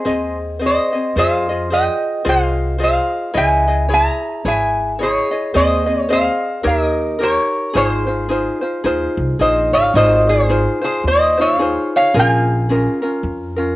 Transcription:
Already playing: resonator guitar played with a steel bar G#4 C5
0.05 upright bass D#2, ukulele C4 G#4 C5 D#5
0.59 ukulele C4 G#4 C5 D#5
0.66 resonator guitar played with a steel bar C5 D#5
0.93 ukulele C4 G#4 D#5
1.16 upright bass F2, ukulele F4 G#4 C5 D#5, resonator guitar played with a steel bar C5 F5
1.49 ukulele F4 G#4 D#5
1.70 ukulele F4 G#4 C5 D#5, resonator guitar played with a steel bar D#5 G5
2.25 upright bass C2, ukulele F4 G#4 C5 D#5
2.29 resonator guitar played with a steel bar C5 F5
2.78 ukulele F4 G#4 C5 D#5
2.84 resonator guitar played with a steel bar C5 F5
3.34 upright bass C#2, ukulele E4 G#4 C#5 D#5, resonator guitar played with a steel bar E5
3.38 resonator guitar played with a steel bar G#5
3.68 ukulele E4 G#4 D#5
3.89 ukulele E4 G#4 C#5
3.94 resonator guitar played with a steel bar E5 A#5
4.45 upright bass G#1, ukulele E4 G#4 C#5, resonator guitar played with a steel bar E5 G#5
4.99 ukulele E4 G#4 C#5 D#5, resonator guitar played with a steel bar C#5
5.03 resonator guitar played with a steel bar G#4
5.31 ukulele E4 G#4 D#5
5.54 upright bass D#2, ukulele C4 G#4 C5 D#5, resonator guitar played with a steel bar C5 D#5
5.86 ukulele C4 G#4 D#5
6.00 resonator guitar played with a steel bar C#5
6.09 ukulele C4 G#4 C5 D#5, resonator guitar played with a steel bar C5 F5
6.63 upright bass D#2, ukulele D#4 G4 A#4 C#5
6.67 resonator guitar played with a steel bar A#4 D#5
7.19 ukulele D#4 G4 A#4 C#5
7.23 resonator guitar played with a steel bar A#4 C#5
7.74 upright bass G#1, ukulele D#4 F4 G#4 C5, resonator guitar played with a steel bar G#4 C5
8.07 ukulele D#4 F4 C5
8.29 ukulele D#4 F4 G#4 C5
8.61 ukulele D#4 F4 C5
8.84 upright bass D#2, ukulele D#4 F4 G#4 C5
9.17 upright bass C2
9.39 upright bass A#1, ukulele D#4 F4 G#4 C5, resonator guitar played with a steel bar C5 D#5
9.72 upright bass G#1, resonator guitar played with a steel bar C#5 F5
9.94 upright bass G#1, ukulele D#4 F4 G#4 C5, resonator guitar played with a steel bar C5 D#5
10.29 resonator guitar played with a steel bar G#4 C5
10.49 ukulele D#4 F4 G#4 C5
10.81 ukulele D#4 F4 C5, resonator guitar played with a steel bar G#4 C5
11.04 upright bass D#2, resonator guitar played with a steel bar C5 D#5
11.37 ukulele D#4 F4 C5, resonator guitar played with a steel bar C#5 F5
11.59 ukulele D#4 F4 G#4 C5
11.96 resonator guitar played with a steel bar C#5 F5
12.14 upright bass A#1, ukulele C#4 F4 G#4 A#4
12.19 resonator guitar played with a steel bar F5 G#5
12.69 ukulele C#4 F4 G#4 A#4
13.02 ukulele C#4 F4 A#4
13.23 upright bass F2
13.56 ukulele C#4 F4 A#4

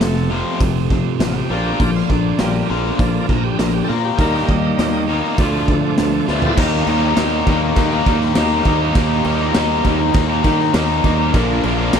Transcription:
Already playing: overdriven electric guitar F2 C3 F3 A3 C4 F4
0.00 fingered electric bass F1, overdriven electric guitar F2 C3, tonewheel organ A3, snare, open hi-hat
0.16 snare
0.30 overdriven electric guitar F2 C3 F3 A3 C4 F4
0.60 fingered electric bass F1, overdriven electric guitar F2 C3, kick, open hi-hat
0.90 overdriven electric guitar F2 C3, kick
1.20 fingered electric bass A1, overdriven electric guitar F2 C3 F3 A3 C4 F4, tonewheel organ F4, snare, open hi-hat
1.33 tonewheel organ F#4
1.38 tonewheel organ G4
1.50 fingered electric bass A#1, overdriven electric guitar A#2 D3 F3 A#3 D4 F4, tonewheel organ F3 A#3 D4
1.80 fingered electric bass A#1, overdriven electric guitar A#2 F3, kick, open hi-hat
1.95 tonewheel organ F4, snare
2.09 fingered electric bass A#1, overdriven electric guitar A#2 F3, tonewheel organ D4, kick
2.39 fingered electric bass A#1, overdriven electric guitar A#2 D3 F3 A#3 D4 F4, tonewheel organ G3 A#3, snare, open hi-hat
2.55 snare
2.69 fingered electric bass A#1, overdriven electric guitar A#2 F3 A#3
2.99 fingered electric bass A#1, overdriven electric guitar A#2 F3, tonewheel organ F3 A#3 D4, kick, open hi-hat
3.29 fingered electric bass A#1, overdriven electric guitar A#2 D3 F3 A#3 D4 F4, tonewheel organ A#4, kick
3.43 tonewheel organ G4
3.59 fingered electric bass A#1, overdriven electric guitar A#2 F3, tonewheel organ A#4, snare, open hi-hat
3.74 tonewheel organ G4
3.84 tonewheel organ A4
3.88 overdriven electric guitar A#2 F3 A#3, fingered electric bass A#2, tonewheel organ A#4
4.05 tonewheel organ G4
4.18 fingered electric bass D#2, overdriven electric guitar D#3 G3 A#3 D#4 G4, tonewheel organ G3 A#3 D#4 A#4, kick, open hi-hat
4.34 tonewheel organ G4, snare
4.49 fingered electric bass D#2, overdriven electric guitar D#3 G3, tonewheel organ D#4, kick
4.79 fingered electric bass D#2, overdriven electric guitar D#3 G3, snare, open hi-hat
5.08 overdriven electric guitar D#3 G3 A#3 D#4 G4
5.38 fingered electric bass D2, overdriven electric guitar D3 F3 A3 D4 F4, tonewheel organ F3 A3 D4, kick, open hi-hat
5.68 overdriven electric guitar D3 F3, kick
5.98 fingered electric bass D2, overdriven electric guitar D3 F3, snare, open hi-hat
6.27 fingered electric bass D2, overdriven electric guitar D3 F3 A3 D4 F4, tonewheel organ A3, snare
6.31 tonewheel organ B3 C4
6.37 tonewheel organ D4 E4
6.42 tonewheel organ F4 G4, floor tom
6.47 tonewheel organ A4 B4
6.53 overdriven electric guitar D#3, tonewheel organ C5 D5
6.57 fingered electric bass D#2, overdriven electric guitar G3 A#3 D#4 G4, tonewheel organ A#3 D#4 G4 A#4, kick, crash
6.86 fingered electric bass D#2, overdriven electric guitar D#3 G3 A#3 D#4 G4, crash
7.02 overdriven electric guitar G3 A#3 D#4 G4
7.16 fingered electric bass D#2, overdriven electric guitar D#3 G3 A#3 D#4 G4, snare, crash
7.45 fingered electric bass D#2, overdriven electric guitar D#3 G3 A#3 D#4 G4, kick, crash
7.61 overdriven electric guitar G3 A#3 D#4, muted overdriven electric guitar stroke
7.76 fingered electric bass D#2, overdriven electric guitar D#3 A#3 D#4, kick, crash
7.90 overdriven electric guitar G3 A#3 D#4 G4
8.05 fingered electric bass D#2, overdriven electric guitar D#3 G3 A#3 D#4 G4, kick, crash
8.20 muted overdriven electric guitar stroke, snare
8.35 fingered electric bass D#2, overdriven electric guitar D#3 G3 A#3 D#4 G4, snare, crash
8.51 snare
8.65 fingered electric bass D#2, overdriven electric guitar D#3 G3 A#3 D#4, kick, crash
8.80 overdriven electric guitar G3 A#3 D#4 G4
8.95 fingered electric bass D#2, overdriven electric guitar D#3 G3 A#3 D#4 G4, tonewheel organ D#4 G4 A#4, kick, crash
9.25 fingered electric bass D#2, overdriven electric guitar D#3 G3 A#3 D#4 G4, crash
9.40 overdriven electric guitar G3 A#3 D#4 G4
9.54 fingered electric bass D#2, overdriven electric guitar D#3 G3 A#3 D#4 G4, snare, crash
9.84 fingered electric bass D#2, overdriven electric guitar D#3 G3 A#3 D#4 G4, kick, crash
9.99 overdriven electric guitar G3 A#3 D#4, muted overdriven electric guitar stroke
10.14 fingered electric bass D#2, overdriven electric guitar D#3 A#3 D#4, kick, crash
10.30 overdriven electric guitar G3 A#3 D#4 G4
10.43 overdriven electric guitar D#3 G3 A#3 D#4 G4, fingered electric bass D#3, kick, crash
10.59 muted overdriven electric guitar stroke, snare
10.73 fingered electric bass D#2, overdriven electric guitar D#3 G3 A#3 D#4 G4, snare, crash
10.89 snare
11.03 fingered electric bass D#2, overdriven electric guitar D#3 G3 A#3 D#4, kick, crash
11.18 overdriven electric guitar G3 A#3 D#4 G4
11.33 fingered electric bass A#1, overdriven electric guitar A#2 D3 F3 A#3 D4 A#4, tonewheel organ A#3 D4 F4 A#4, kick, crash
11.63 fingered electric bass A#1, overdriven electric guitar A#2 D3 F3 A#3 D4 A#4, crash
11.77 overdriven electric guitar F3 A#3 D4 A#4
11.92 fingered electric bass A#1, overdriven electric guitar A#2 D3 F3 A#3 D4 A#4, snare, crash

